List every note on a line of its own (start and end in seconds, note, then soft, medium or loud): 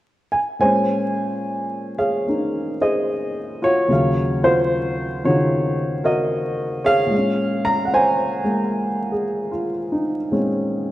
0.32 0.38 G#5 medium
0.59 3.89 A#2 soft
0.59 3.90 G#3 soft
0.59 2.23 C5 medium
0.59 1.97 C#5 medium
0.59 1.95 G#5 medium
0.65 2.26 C#4 medium
1.98 2.80 G#4 medium
1.98 3.58 C#5 medium
1.98 2.77 F5 medium
2.26 3.89 A#3 soft
2.26 3.90 C#4 soft
2.26 3.91 D#4 soft
2.81 3.86 G#4 medium
2.81 3.85 C5 medium
2.81 3.65 D#5 medium
3.62 4.41 F4 medium
3.62 4.42 F#4 medium
3.62 4.46 C#5 medium
3.88 7.11 D#2 medium
3.88 5.23 C#3 soft
3.88 7.13 F#3 soft
3.92 6.84 F5 medium
4.43 5.23 F4 medium
4.43 5.23 F#4 medium
4.43 5.27 C5 medium
5.24 7.12 C#3 soft
5.24 7.13 D#3 soft
5.24 7.13 D#4 soft
5.24 6.81 F4 medium
5.24 6.03 F#4 medium
5.24 6.08 C#5 medium
6.04 7.08 F#4 medium
6.04 7.07 A#4 medium
6.04 6.81 D#5 medium
6.84 8.41 G#4 medium
6.84 7.93 C#5 medium
6.84 7.68 F5 loud
7.06 10.30 A#2 soft
7.11 8.42 G#3 soft
7.18 10.31 C#4 medium
7.65 7.88 A#5 loud
7.85 7.91 F#5 medium
7.94 9.49 C5 medium
7.94 9.49 C#5 medium
7.94 9.22 G#5 medium
8.44 10.30 G#3 soft
8.44 10.33 A#3 soft
9.12 9.68 G#4 soft
9.52 10.15 F4 medium
9.92 10.49 D#4 soft
10.31 10.92 A#2 soft
10.31 10.92 G#3 soft
10.31 10.92 C4 soft
10.31 10.92 C#4 medium